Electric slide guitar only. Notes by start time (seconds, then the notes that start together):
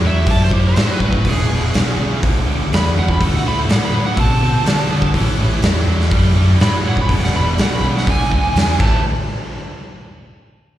0.07 E5
0.31 A5
0.44 C5
0.69 C5
0.93 B4
1.30 G#4
2.75 B5
2.99 F#5
3.10 B5
3.36 F#5
3.48 B5
3.72 F#5
3.85 B5
4.06 F#5
4.20 A5
6.62 B5
6.89 F#5
7.01 B5
7.25 F#5
7.36 B5
7.62 F#5
7.74 B5
7.98 F#5
8.10 G#5
8.81 A5